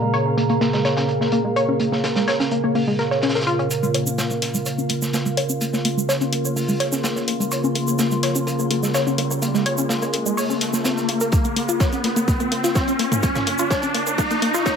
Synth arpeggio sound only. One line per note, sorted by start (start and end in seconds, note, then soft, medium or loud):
0.02 0.07 G#3 medium
0.14 0.19 C#5 loud
0.26 0.29 C#4 medium
0.38 0.43 A#3 medium
0.50 0.57 A#3 medium
0.61 0.66 A#3 medium
0.74 0.78 G#3 medium
0.85 0.90 C#5 medium
0.97 1.00 C#4 medium
1.09 1.14 A#3 medium
1.21 1.28 A#3 medium
1.32 1.38 A#3 medium
1.45 1.50 G#3 medium
1.56 1.61 C#5 loud
1.69 1.72 C#4 medium
1.80 1.85 A#3 medium
1.92 2.00 A#3 medium
2.04 2.09 A#3 medium
2.16 2.21 G#3 medium
2.28 2.33 C#5 loud
2.40 2.43 C#4 medium
2.52 2.57 A#3 medium
2.64 2.71 A#3 medium
2.75 2.80 A#3 medium
2.88 2.92 G#3 medium
2.99 3.04 A#4 medium
3.11 3.19 C#5 medium
3.23 3.31 C#4 medium
3.35 3.40 A#4 medium
3.47 3.55 F4 loud
3.59 3.64 C#4 medium
3.71 3.76 A#3 medium
3.83 3.88 G#3 medium
3.95 4.00 C#5 loud
4.07 4.10 C#4 medium
4.18 4.23 A#3 medium
4.31 4.38 A#3 medium
4.42 4.47 A#3 medium
4.54 4.59 G#3 medium
4.66 4.71 C#5 loud
4.78 4.81 C#4 medium
4.90 4.95 A#3 medium
5.02 5.09 A#3 medium
5.14 5.19 A#3 medium
5.26 5.31 G#3 medium
5.37 5.43 C#5 loud
5.50 5.53 C#4 medium
5.61 5.66 A#3 medium
5.74 5.81 A#3 medium
5.85 5.90 A#3 medium
5.97 6.02 G#3 medium
6.09 6.14 C#5 loud
6.21 6.24 C#4 medium
6.32 6.38 A#3 medium
6.45 6.52 A#3 medium
6.56 6.61 A#3 medium
6.69 6.73 G#3 medium
6.80 6.85 C#5 loud
6.92 6.95 C#4 medium
7.04 7.09 A#3 medium
7.16 7.23 A#3 medium
7.28 7.33 A#3 medium
7.40 7.45 G#3 medium
7.52 7.57 C#5 loud
7.64 7.67 C#4 medium
7.75 7.81 A#3 medium
7.88 7.95 A#3 medium
7.99 8.04 A#3 medium
8.12 8.16 G#3 medium
8.23 8.28 C#5 loud
8.35 8.38 C#4 medium
8.47 8.52 A#3 medium
8.59 8.66 A#3 medium
8.71 8.76 A#3 medium
8.83 8.88 G#3 medium
8.95 9.00 C#5 loud
9.07 9.10 C#4 medium
9.18 9.23 A#3 medium
9.31 9.38 A#3 medium
9.42 9.47 A#3 medium
9.54 9.59 G#3 medium
9.66 9.71 C#5 loud
9.78 9.81 C#4 medium
9.90 9.95 A#3 medium
10.02 10.09 A#3 medium
10.14 10.19 A#3 medium
10.26 10.31 G#3 medium
10.37 10.42 C#5 loud
10.50 10.53 C#4 medium
10.73 10.76 A#3 medium
10.85 10.88 C4 medium
11.09 11.14 F4 medium
11.21 11.26 A#4 loud
11.33 11.38 A#3 medium
11.45 11.52 A#3 medium
11.56 11.62 A#3 medium
11.69 11.74 F4 medium
11.80 11.85 C#5 medium
11.93 11.95 C#4 medium
12.04 12.09 A#3 medium
12.16 12.24 A#3 medium
12.28 12.33 A#3 medium
12.40 12.47 A#3 medium
12.52 12.57 A#3 medium
12.64 12.69 F4 medium
12.76 12.81 C#5 loud
12.88 12.91 C#4 medium
12.99 13.04 A#3 medium
13.12 13.19 A#3 medium
13.23 13.28 A#3 medium
13.36 13.43 A#3 medium
13.47 13.52 A#3 medium
13.59 13.64 F4 medium
13.71 13.76 C#5 loud
13.83 13.86 C#4 medium
13.95 14.00 A#3 medium
14.07 14.14 A#3 medium
14.18 14.24 A#3 medium
14.31 14.38 A#3 medium
14.42 14.47 A#3 medium
14.54 14.59 F4 loud
14.66 14.71 C#5 loud